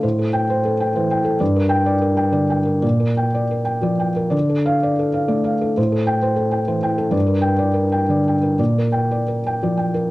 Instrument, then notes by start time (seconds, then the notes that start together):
felt piano
0.03 A2 C5
0.19 A4
0.33 G5
0.50 C5
0.65 A4
0.80 G5
0.95 E3 C5
1.11 G5
1.25 A4
1.40 G2 D5
1.56 A#4
1.69 G5
1.86 D5
2.02 A#4
2.17 G5
2.32 D3 D5
2.50 G5
2.65 A#4
2.82 A#2 D5
3.00 A#4
3.17 G5
3.34 D5
3.51 A#4
3.65 G5
3.82 F3 D5
4.00 G5
4.16 A#4
4.30 D3 D5
4.49 A4
4.66 F5
4.83 D5
4.99 A4
5.14 F5
5.28 A3 D5
5.44 F5
5.61 A4
5.77 A2 C5
5.92 A4
6.07 G5
6.22 C5
6.36 A4
6.52 G5
6.67 E3 C5
6.83 G5
6.98 A4
7.11 G2 D5
7.27 A#4
7.41 G5
7.59 D5
7.74 A#4
7.92 G5
8.09 D3 D5
8.28 G5
8.43 A#4
8.59 A#2 D5
8.78 A#4
8.92 G5
9.11 D5
9.28 A#4
9.47 G5
9.63 F3 D5
9.77 G5
9.94 A#4